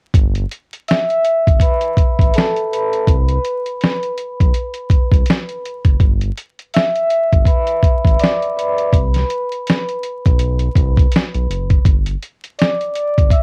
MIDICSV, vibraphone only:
0, 0, Header, 1, 2, 480
1, 0, Start_track
1, 0, Key_signature, 1, "major"
1, 0, Tempo, 731707
1, 96, Time_signature, 4, 2, 24, 8
1, 8809, End_track
2, 0, Start_track
2, 0, Title_t, "Vibraphone"
2, 0, Program_c, 0, 11
2, 212, Control_c, 0, 64, 127
2, 580, Note_on_c, 0, 88, 74
2, 581, Note_on_c, 0, 76, 99
2, 1031, Note_off_c, 0, 88, 0
2, 1060, Note_on_c, 0, 83, 63
2, 1061, Note_on_c, 0, 71, 94
2, 1072, Note_off_c, 0, 76, 0
2, 1512, Note_off_c, 0, 83, 0
2, 1539, Note_on_c, 0, 69, 85
2, 1544, Note_on_c, 0, 81, 66
2, 1553, Note_off_c, 0, 71, 0
2, 1646, Note_off_c, 0, 69, 0
2, 1650, Note_off_c, 0, 81, 0
2, 1785, Note_on_c, 0, 71, 80
2, 1789, Note_on_c, 0, 83, 61
2, 2024, Control_c, 0, 64, 0
2, 2132, Control_c, 0, 64, 127
2, 2714, Note_off_c, 0, 71, 0
2, 2716, Note_off_c, 0, 83, 0
2, 3944, Control_c, 0, 64, 0
2, 4052, Control_c, 0, 64, 127
2, 4422, Note_on_c, 0, 76, 104
2, 4424, Note_on_c, 0, 88, 76
2, 4874, Note_off_c, 0, 88, 0
2, 4901, Note_on_c, 0, 71, 80
2, 4902, Note_on_c, 0, 83, 65
2, 4913, Note_off_c, 0, 76, 0
2, 5353, Note_off_c, 0, 83, 0
2, 5380, Note_on_c, 0, 86, 70
2, 5381, Note_on_c, 0, 74, 90
2, 5392, Note_off_c, 0, 71, 0
2, 5601, Note_off_c, 0, 86, 0
2, 5602, Note_off_c, 0, 74, 0
2, 5622, Note_on_c, 0, 83, 58
2, 5623, Note_on_c, 0, 71, 80
2, 5865, Control_c, 0, 64, 0
2, 5989, Control_c, 0, 64, 127
2, 6553, Note_off_c, 0, 71, 0
2, 6553, Note_off_c, 0, 83, 0
2, 7784, Control_c, 0, 64, 0
2, 7913, Control_c, 0, 64, 127
2, 8257, Note_on_c, 0, 74, 81
2, 8262, Note_on_c, 0, 86, 62
2, 8713, Note_off_c, 0, 86, 0
2, 8732, Note_on_c, 0, 76, 94
2, 8742, Note_on_c, 0, 88, 73
2, 8751, Note_off_c, 0, 74, 0
2, 8809, Note_off_c, 0, 76, 0
2, 8809, Note_off_c, 0, 88, 0
2, 8809, End_track
0, 0, End_of_file